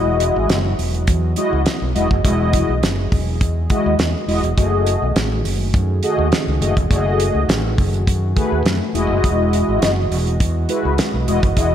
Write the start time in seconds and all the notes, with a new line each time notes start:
Already playing: E1 E3 F#3 G#3 E4 F#4 D#5
0.20 closed hi-hat
0.36 G#1
0.50 F#1, snare, closed hi-hat
0.79 E1, open hi-hat
0.94 closed hi-hat
1.07 E2, kick, closed hi-hat
1.36 G#3 E4 F#4 D#5, closed hi-hat
1.53 C#2
1.66 snare, closed hi-hat
1.82 B1
1.95 E1 G#3 E4 F#4 G#4 D#5, closed hi-hat
2.11 F#1, kick
2.24 E1 G#3 E4 F#4 D#5, kick, closed hi-hat
2.53 kick, closed hi-hat
2.69 B1
2.83 F#1, snare, closed hi-hat
3.12 E1, kick, open hi-hat
3.41 E2, kick, closed hi-hat
3.70 G#3 E4 F#4 D#5, kick, closed hi-hat
3.86 D#2
3.99 E2, snare, closed hi-hat
4.28 E1 G#3 E4 F#4 D#5, open hi-hat
4.43 E1, closed hi-hat
4.57 F#1 D#3 A3 F#4 G#4 D#5, kick, closed hi-hat
4.87 closed hi-hat
5.02 B1
5.15 A1, snare, closed hi-hat
5.45 F#1, open hi-hat
5.74 F#2, kick, closed hi-hat
6.03 A3 F#4 G#4 D#5, closed hi-hat
6.18 D#2
6.32 snare, closed hi-hat
6.47 C#2
6.61 F#1 A3 F#4 G#4 D#5, closed hi-hat
6.77 E1, kick, closed hi-hat
6.90 F#1 A3 F#4 G#4 D5, kick, closed hi-hat
6.97 D#5
7.20 closed hi-hat
7.34 C#2
7.48 A1, snare, closed hi-hat
7.78 F#1, kick, open hi-hat
7.94 closed hi-hat
8.07 F#2, kick, closed hi-hat
8.36 A3 F#4 G#4 B4, kick, closed hi-hat
8.52 D#2
8.65 F#2, snare, closed hi-hat
8.94 E1 E3 G#3 E4 F#4 D#5, closed hi-hat
9.10 F#1
9.24 E1, kick, closed hi-hat
9.53 closed hi-hat
9.68 G#1
9.82 F#1, snare, closed hi-hat
10.11 E1, open hi-hat
10.27 closed hi-hat
10.40 E2, kick, closed hi-hat
10.69 G#3 E4 F#4 B4, closed hi-hat
10.85 C#2
10.98 snare, closed hi-hat
11.14 B1
11.28 E1 G#3 E4 F#4 D#5, closed hi-hat
11.43 F#1, kick, closed hi-hat
11.56 E1 G#3 E4 F#4 D#5, kick, closed hi-hat